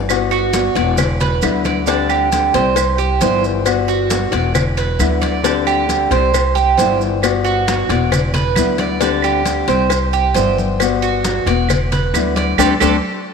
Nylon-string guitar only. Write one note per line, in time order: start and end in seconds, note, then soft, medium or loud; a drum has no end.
0.09 0.51 G3 medium
0.09 0.53 B3 medium
0.09 0.53 F#4 medium
0.53 0.75 G3 medium
0.53 0.75 B3 medium
0.53 0.74 F#4 medium
0.75 0.97 B3 medium
0.75 0.97 F#4 medium
0.98 muted nylon-string guitar stroke medium
1.42 1.85 D3 medium
1.42 1.86 G3 medium
1.42 1.87 B3 medium
1.42 1.87 E4 medium
1.86 2.30 D3 medium
1.86 2.31 G3 medium
1.86 2.31 C4 medium
1.86 2.32 G4 medium
2.32 2.53 D3 medium
2.32 2.54 G3 medium
2.32 2.53 C4 medium
2.32 2.53 G4 medium
2.54 2.75 G3 medium
2.54 2.76 C4 medium
2.54 2.76 G4 medium
2.76 muted nylon-string guitar stroke medium
3.21 3.65 E3 medium
3.21 3.64 G3 medium
3.21 3.65 B3 medium
3.21 3.66 E4 medium
3.65 4.09 G3 medium
3.65 4.10 B3 medium
3.65 4.10 F#4 medium
4.10 4.32 G3 medium
4.10 4.32 B3 medium
4.10 4.30 F#4 medium
4.31 4.53 B3 medium
4.31 4.54 F#4 medium
4.54 muted nylon-string guitar stroke medium
4.99 5.42 D3 medium
4.99 5.43 G3 medium
4.99 5.44 B3 medium
4.99 5.44 E4 medium
5.43 5.87 D3 medium
5.43 5.88 G3 medium
5.43 5.88 C4 medium
5.43 5.89 G4 medium
5.88 6.10 D3 soft
5.88 6.10 G3 medium
5.88 6.11 C4 medium
5.88 6.10 G4 medium
6.11 6.33 G3 medium
6.11 6.33 C4 medium
6.11 6.33 G4 medium
6.34 muted nylon-string guitar stroke medium
6.79 7.22 E3 soft
6.79 7.21 G3 medium
6.79 7.22 B3 medium
6.79 7.23 E4 medium
7.22 7.66 G3 medium
7.22 7.67 B3 medium
7.22 7.67 F#4 medium
7.67 7.89 G3 medium
7.67 7.89 B3 medium
7.67 7.88 F#4 medium
7.89 8.12 B3 medium
7.89 8.11 F#4 medium
8.12 muted nylon-string guitar stroke medium
8.56 8.99 D3 medium
8.56 9.00 G3 medium
8.56 9.01 B3 medium
8.56 9.01 E4 medium
9.00 9.44 D3 medium
9.00 9.44 G3 medium
9.00 9.45 C4 medium
9.00 9.46 G4 medium
9.45 9.67 D3 soft
9.45 9.67 G3 medium
9.45 9.67 C4 medium
9.45 9.66 G4 medium
9.68 9.90 G3 medium
9.68 9.90 C4 medium
9.68 9.89 G4 medium
9.90 muted nylon-string guitar stroke medium
10.35 10.79 E3 medium
10.35 10.79 G3 medium
10.35 10.80 B3 medium
10.35 10.80 E4 medium
10.80 11.24 G3 medium
10.80 11.24 B3 medium
10.80 11.25 F#4 medium
11.25 11.46 G3 medium
11.25 11.47 B3 medium
11.25 11.46 F#4 medium
11.47 11.69 B3 medium
11.47 11.69 F#4 medium
11.70 muted nylon-string guitar stroke medium
12.14 12.58 D3 medium
12.14 12.58 G3 medium
12.14 12.59 B3 medium
12.14 12.59 E4 medium
12.59 12.73 A3 loud
12.59 12.73 C4 loud
12.59 12.73 D4 loud
12.81 12.96 A3 medium
12.81 12.96 C4 loud
12.81 12.96 D4 medium